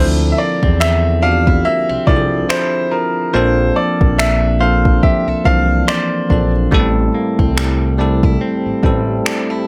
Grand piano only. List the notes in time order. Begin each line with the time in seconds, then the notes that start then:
0.32 E5
0.38 D5
0.80 E5
1.23 F5
1.65 E5
2.07 D5
2.49 C5
2.91 A#4
3.34 C5
3.76 D5
4.18 E5
4.60 F5
5.03 E5
5.45 F5
5.88 D5